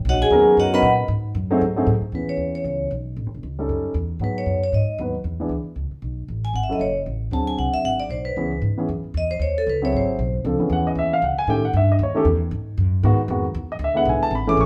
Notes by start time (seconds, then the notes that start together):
0.05 B1
0.09 F#4 C#5 D#5 F#5
0.13 A#1
0.22 F#1 G#4 G#5
0.30 D#2 F#3 B3 C#4 D#4 A#4
0.57 F#2 F#4 C#5 D#5 F#5
0.73 F#3 B3 C#4 D#4 A#4 B4 D#5 F#5 B5
0.82 A#2
1.08 G#2
1.35 F#2
1.51 F#3 A3 C4 D#4 G#4
1.61 G#2
1.76 F#3 A3 C4 D#4 G#4
1.87 A2
2.01 muted upright bass stroke
2.12 E2 E3 B3 C#4 G#4 B4
2.29 C#5
2.37 D#2
2.55 C#5
2.64 C#2 C#5
2.91 B1
3.16 A1
3.26 G1
3.34 E1
3.43 C#2
3.59 G3 C#4 D#4 A4
3.69 F#2
3.94 E2
4.19 G#2 F#3 B3 D#4 G#4
4.24 B4
4.38 C#5
4.46 F#2
4.63 C#5
4.73 G#2 D#5
4.98 D#2 F#3 B3 D#4 B4
5.24 E2
5.40 E3 B3 D4 G#4
5.49 D2
5.64 muted upright bass stroke
5.76 C#2
5.91 muted upright bass stroke
6.02 B1
6.28 A1
6.45 G#5
6.54 G#1 F#5
6.63 E5
6.69 F#3 C#4 E4 A4 D#5
6.79 F#1 C#5
7.06 A1
7.31 D2 F#3 C4 D4 G#4 A5
7.47 G#5
7.58 C2 F#5
7.74 E5, muted upright bass stroke
7.84 G#1 F#5
8.00 D5
8.09 B1 C5
8.25 B4
8.36 C#2 E3 B3 C#4 G#4
8.62 G#2
8.77 E3 B3 C#4 G#4
8.89 F#2
9.04 muted upright bass stroke
9.14 E2 D#5
9.31 C5
9.39 D#2 C#5
9.58 A4
9.67 C#2 B4
9.82 F#3 C4 E4 G#4 C#5
9.93 G#1
9.97 C5
10.19 B1
10.44 C#2 F3 C4 D4 A4
10.59 E3 B3 C#4 G#4, muted upright bass stroke
10.70 E2 F#5
10.87 D#5
10.95 D#2 E5
11.13 F5
11.22 C#2 F#5
11.37 G#5, muted upright bass stroke
11.47 A2 D#3 A3 C#4 G4 G5
11.65 F#5
11.73 G2 E5
11.92 D#5
11.99 D#2
12.03 C#5
12.15 D#3 A3 C#4 G4 A4
12.25 E2
12.51 G#2
12.77 F#2
13.03 G#2 D#3 G#3 B3 F#4
13.28 F2 D#3 G#3 B3 F#4
13.54 E2
13.72 D#5
13.79 D2
13.84 E5
13.94 D3 G#3 B3 E4 F#5
14.05 B1 G#5
14.20 A5, muted upright bass stroke
14.31 G#1
14.35 B5
14.47 E3 A3 C#4 G#4 D6
14.57 A1 C#6